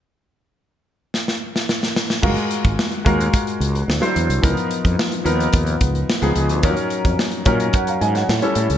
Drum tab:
CC |----------------|x---------------|----------------|----------------|
HH |----------------|-xxx-xxxxxxx-xxx|xxxx-xxxxxxx-xxx|xxxx-xxxxxxx-xxx|
SD |--------oo-ooooo|----o-------o---|----o-------o---|----o------oo---|
BD |----------------|o--o--o-o-------|o--o----o-o-----|o--o--o-o-------|